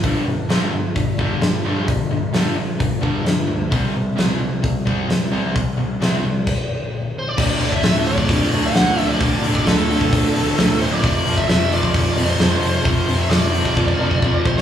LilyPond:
<<
  \new Staff \with { instrumentName = "Lead electric guitar" } { \time 4/4 \key g \major \tempo 4 = 131 r1 | r1 | r1 | r2. r8 c''16 d''16 |
d''8. e''16 e''8 d''4~ d''16 fis''4 d''16~ | d''8. d''16 a'2~ a'8 c''16 d''16 | d''8. e''16 e''8 d''4~ d''16 c''4 c''16~ | c''8. e''16 d''2~ d''8 c''16 d''16 | }
  \new Staff \with { instrumentName = "Distorted electric guitar" } { \clef bass \time 4/4 \key g \major <g, d g>8 <g, d>8 <g, d g>8 <g, d>8 <g, d>8 <g, d g>8 <g, d>8 <g, d g>8 | <g, d>8 <g, d>8 <g, d g>8 <g, d>8 <g, d>8 <g, d g>8 <g, d>8 <g, d>8 | <c g c'>8 <c g>8 <c g c'>8 <c g>8 <c g>8 <c g c'>8 <c g>8 <c g c'>8 | <c g>8 <c g>8 <c g c'>8 <c g>8 r2 |
<d, a, d>8 <d, a, d>8 <d, a, d>8 <d, a, d>8 <d, a, d>8 <d, a, d>8 <d, a, d>8 <d, a, d>8 | <d, a, d>8 <d, a, d>8 <d, a, d>8 <d, a, d>8 <d, a, d>8 <d, a, d>8 <d, a, d>8 <d, a, d>8 | <f, c f>8 <f, c f>8 <f, c f>8 <f, c f>8 <f, c f>8 <f, c f>8 <f, c f>8 <f, c f>8 | <f, c f>8 <f, c f>8 <f, c f>8 <f, c f>8 <f, c f>8 <f, c f>8 <f, c f>8 <f, c f>8 | }
  \new Staff \with { instrumentName = "Overdriven electric guitar" } { \clef bass \time 4/4 \key g \major <g, d g>8 <g, d>8 <g, d g>8 <g, d>8 <g, d>8 <g, d g>8 <g, d>8 <g, d g>8 | <g, d>8 <g, d>8 <g, d g>8 <g, d>8 <g, d>8 <g, d g>8 <g, d>8 <g, d>8 | <c g c'>8 <c g>8 <c g c'>8 <c g>8 <c g>8 <c g c'>8 <c g>8 <c g c'>8 | <c g>8 <c g>8 <c g c'>8 <c g>8 r2 |
<d, a, d>8 <d, a, d>8 <d, a, d>8 <d, a, d>8 <d, a, d>8 <d, a, d>8 <d, a, d>8 <d, a, d>8 | <d, a, d>8 <d, a, d>8 <d, a, d>8 <d, a, d>8 <d, a, d>8 <d, a, d>8 <d, a, d>8 <d, a, d>8 | <f, c f>8 <f, c f>8 <f, c f>8 <f, c f>8 <f, c f>8 <f, c f>8 <f, c f>8 <f, c f>8 | <f, c f>8 <f, c f>8 <f, c f>8 <f, c f>8 <f, c f>8 <f, c f>8 <f, c f>8 <f, c f>8 | }
  \new Staff \with { instrumentName = "Picked electric bass" } { \clef bass \time 4/4 \key g \major g,,8 g,,8 g,,8 g,,8 g,,8 g,,8 g,,8 g,,8 | g,,4 g,,8 g,,8 g,,8 g,,8 g,8 d,8 | c,8 c,8 c,8 c,8 c,8 c,8 c,8 c,8 | c,4 c,8 c,8 r2 |
d,,8 d,,8 d,,4 d,,8 d,,8 d,,8 d,,8 | d,,8 d,,8 d,,4 d,,8 d,,8 d,,4 | f,,8 f,,8 f,,4 f,,8 f,,8 f,,8 f,,8 | f,,8 f,,8 f,,4 f,,8 f,,8 e,,4 | }
  \new DrumStaff \with { instrumentName = "Drums" } \drummode { \time 4/4 <hho bd>4 <hho sn>4 <hho bd>8 bd8 <hho sn>4 | <hho bd>4 <hho sn>4 <hho bd>8 bd8 <hho sn>4 | <hho bd>4 <hho sn>4 <hho bd>8 bd8 <hho sn>4 | <hho bd>4 <hho sn>4 <cymc bd>4 r4 |
<cymc bd>8 hho16 bd16 <hho sn>8 hho16 bd16 <hho bd>8 hho8 <hho sn>8 hho8 | <hho bd>8 hho16 bd16 <hho sn>8 hho16 bd16 <hho bd>8 hho8 <hho sn>8 <hho sn>8 | <hho bd>8 hho16 bd16 <hho sn>8 hho16 bd16 <hho bd>8 hho8 <hho sn>8 hho8 | <hho bd>8 hho8 <hho sn>8 hho16 bd16 bd16 bd8 bd16 bd8 bd16 sn16 | }
>>